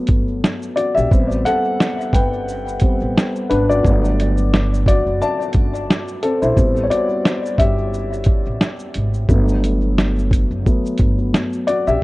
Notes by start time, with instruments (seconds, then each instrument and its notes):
Already playing: upright piano F#3 A3 B3
0.07 upright bass G1, kick, closed hi-hat, shaker
0.44 snare, shaker
0.62 shaker
0.76 upright piano F#4 D5, closed hi-hat, shaker
0.95 upright bass A#1, upright piano G4 E5, shaker
1.11 upright bass A1, upright piano G3 B3 C4, kick, shaker
1.32 shaker
1.45 upright piano A4 F#5, closed hi-hat, shaker
1.80 snare, shaker
2.01 shaker
2.13 upright bass G1, upright piano B4 G5, kick, closed hi-hat, shaker
2.48 shaker
2.68 shaker
2.80 upright piano G3 B3 C4, kick, closed hi-hat, shaker
3.02 upright bass A1
3.17 snare, shaker
3.35 shaker
3.50 upright bass G#1, upright piano D4 B4, closed hi-hat, shaker
3.69 upright piano F#4 D5, shaker
3.83 upright bass G1, upright piano F#3 A3 B3, kick, shaker
4.04 shaker
4.20 closed hi-hat, shaker
4.37 shaker
4.54 snare, shaker
4.74 shaker
4.86 upright piano F#4 D5, kick, closed hi-hat, shaker
5.06 upright bass F#1
5.21 upright piano D5 A5, shaker
5.42 shaker
5.53 upright bass G1, kick, closed hi-hat, shaker
5.75 shaker
5.90 snare, shaker
6.08 shaker
6.23 upright piano C4 A4, closed hi-hat, shaker
6.42 upright bass A#1, upright piano E4 C5, shaker
6.56 upright bass A1, upright piano G3 B3 C4, kick, shaker
6.76 shaker
6.84 upright piano C#5
6.90 upright piano F#4 D5, closed hi-hat, shaker
7.25 snare, shaker
7.46 shaker
7.58 upright bass G1, upright piano G4 E5, kick, closed hi-hat, shaker
7.94 shaker
8.13 shaker
8.24 kick, closed hi-hat, shaker
8.47 upright bass A1
8.61 snare, shaker
8.79 shaker
8.94 upright bass G#1, closed hi-hat, shaker
9.14 shaker
9.29 upright bass G1, upright piano F#3 A3 B3, kick, shaker
9.48 shaker
9.64 closed hi-hat, shaker
9.98 snare, shaker
10.19 shaker
10.31 kick, closed hi-hat, shaker
10.51 upright bass F#1
10.66 upright piano F#3 A3 B3, kick, shaker
10.86 shaker
10.98 upright bass G1, kick, closed hi-hat, shaker
11.34 snare, shaker
11.53 shaker
11.67 upright piano F#4 D5, closed hi-hat, shaker
11.87 upright bass A#1, upright piano G4 E5, shaker